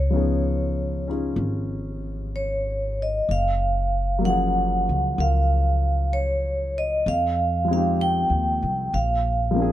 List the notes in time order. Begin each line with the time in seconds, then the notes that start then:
Already playing: C#2 C#5
0.10 F3 B3 C#4 D#4
0.16 G#4
1.08 C#4 D#4 F4 G#4
1.36 G#1
2.36 C#5
3.02 D#5
3.29 F#1 F5
4.19 F#3 A#3
4.24 F3 C#4 F#5
4.30 G#4
4.89 C#2
5.18 C#2 F4 A#4 F5
6.13 C#5
6.78 D#5
7.06 F2 F5
7.65 F3 G#3
7.71 C4 D#4 F5
7.77 G4
8.01 G5
8.30 D#2
8.62 C2
8.94 A#1 F5
9.51 F3 A#3
9.56 C4 D4
9.62 G#4